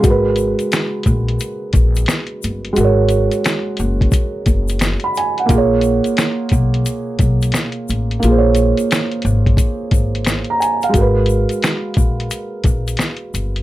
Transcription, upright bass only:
X:1
M:4/4
L:1/16
Q:"Swing 16ths" 1/4=88
K:G#dor
V:1 name="Upright bass" clef=bass
G,,,3 z3 A,,,2 z2 A,,,2 z2 =G,,,2 | G,,,3 z3 F,,,2 z2 F,,,3 z3 | A,,,3 z3 B,,,2 z2 B,,,2 z2 =A,,,2 | A,,,3 z3 G,,,2 z2 G,,,3 z3 |
G,,,3 z3 A,,,2 z2 A,,,2 z2 =G,,,2 |]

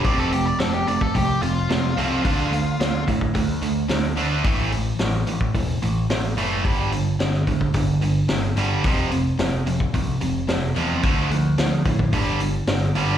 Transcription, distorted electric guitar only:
X:1
M:4/4
L:1/8
Q:1/4=109
K:Flyd
V:1 name="Distorted electric guitar" clef=bass
[F,A,C] [F,A,] [F,A,] [F,A,] [F,A,] [F,A,] [F,A,] [F,A,C] | [D,A,D] [D,A,] [D,A,] [D,A,] [D,A,] [D,A,] [D,A,] [D,A,D] | [A,,E,A,] [A,,E,] [A,,E,] [A,,E,] [A,,E,] [A,,E,] [A,,E,] [A,,E,A,] | [G,,D,G,] [G,,D,] [G,,D,] [G,,D,] [G,,D,] [G,,D,] [G,,D,] [G,,D,G,] |
[F,,C,F,] [F,,C,] [F,,C,] [F,,C,] [F,,C,] [F,,C,] [F,,C,] [F,,C,F,] | [D,F,A,] [D,F,] [D,F,] [D,F,] [G,,D,G,] [G,,D,] [G,,D,] [G,,D,G,] |]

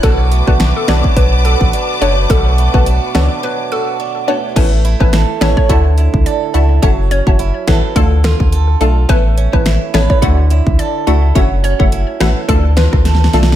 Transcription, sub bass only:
X:1
M:4/4
L:1/16
Q:"Swing 16ths" 1/4=106
K:Bdor
V:1 name="Sub bass" clef=bass
B,,,3 B,,,2 z B,,, z B,,,3 A,,, z2 F,,,2 | B,,,3 B,,,2 z C,, z8 z | A,,,3 A,,,2 z A,,, z D,,3 C,, z2 C,,2 | F,,,3 F,,,2 z A,,, z D,,3 D,,3 B,,,2 |
A,,,3 A,,,2 z A,,, z D,,3 C,, z2 C,,2 | F,,,3 F,,,2 z A,,, z D,,3 D,,3 B,,,2 |]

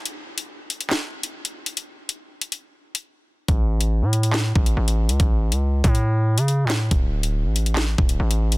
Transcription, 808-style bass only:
X:1
M:4/4
L:1/16
Q:1/4=140
K:Aphr
V:1 name="808-style bass" clef=bass
z16 | z16 | A,,,4- A,,, A,,4- A,, A,,,2 A,,,3 ^C,, | A,,,3 ^C,,3 A,,4- A,, ^C,2- C,/2 A,,2- A,,/2 |
D,,,4- D,,, A,,,4- A,,, D,,,2 A,,,4 |]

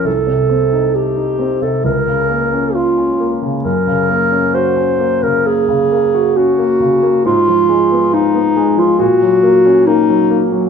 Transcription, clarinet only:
X:1
M:4/4
L:1/16
Q:1/4=67
K:Gblyd
V:1 name="Clarinet"
=A4 =G3 A B4 F3 z | B4 c3 B A4 G4 | F4 E3 F G4 E3 z |]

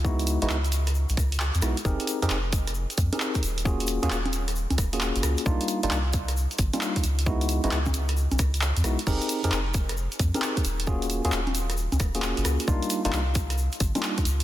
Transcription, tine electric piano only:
X:1
M:4/4
L:1/16
Q:"Swing 16ths" 1/4=133
K:Cm
V:1 name="Tine electric piano"
[A,_CE_F_G]3 [A,CEFG] z8 z2 [A,CEFG] z | [CEGAB]3 [CEGAB] z6 z [CEGAB]3 z2 | [B,_DF_GA]3 [B,DFGA] z6 z [B,DFGA]4- [B,DFGA] | [G,B,DEF]3 [G,B,DEF] z6 z [G,B,DEF]3 z2 |
[A,_CE_F_G]3 [A,CEFG] z8 z2 [A,CEFG] z | [CEGAB]3 [CEGAB] z6 z [CEGAB]3 z2 | [B,_DF_GA]3 [B,DFGA] z6 z [B,DFGA]4- [B,DFGA] | [G,B,DEF]3 [G,B,DEF] z6 z [G,B,DEF]3 z2 |]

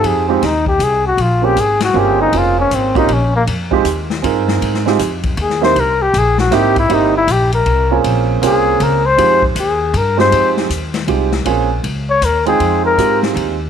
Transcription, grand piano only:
X:1
M:3/4
L:1/8
Q:"Swing" 1/4=158
K:Fm
V:1 name="Grand piano"
[CEFGA] [A,CEFG] z4 | z [B,CDFA] z2 [B,CDFA]2 | [B,CDFA]3 [B,CDFG] z2 | z [A,CEFG] z2 [CEFAB]2- |
[CEFAB] [A,CEFG] z3 [B,CE=EG] | z4 [B,C^D=EG] z | [B,C^D=EG] z4 [B,C_DFA]- | [B,CDFA]2 [B,CDFA]3 z |
[A,CEFG] z4 [A,CEFG]- | [A,CEFG]2 z2 [A,CEFG] z | [B,CDFA] z4 [A,CEFg]- | [A,CEFg]2 [A,CEFG]3 z |]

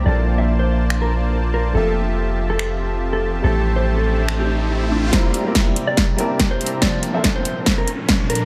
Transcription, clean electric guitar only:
X:1
M:4/4
L:1/16
Q:"Swing 16ths" 1/4=142
K:Cmix
V:1 name="Clean electric guitar"
d2 z e z c2 z2 B z4 B z | A2 z4 z A2 z4 A2 z | A2 z c z A2 z2 G z4 D z | c2 z4 z d2 z4 c2 z |
d2 z e z c2 z2 B z4 B z |]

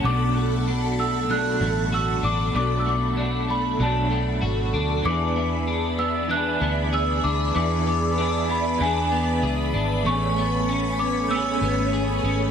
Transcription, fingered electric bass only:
X:1
M:4/4
L:1/8
Q:1/4=96
K:Emix
V:1 name="Fingered electric bass" clef=bass
B,,,4- B,,, A,,,2 A,,, | B,,,4 B,,,2 G,,, D,, | E,,4- E,, D,,2 D,, | E,,4 E,,2 C,, G,,, |
A,,,4- A,,, G,,,2 G,,, |]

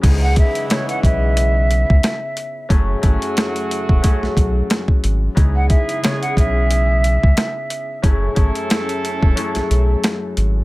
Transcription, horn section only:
X:1
M:4/4
L:1/8
Q:"Swing 16ths" 1/4=90
K:C#m
V:1 name="Horn section"
[E,G,B,E]6- [E,G,B,E] z | [F,A,CF]6- [F,A,CF] z | [G,EG]6- [G,EG] z | [A,CEA]6- [A,CEA] z |]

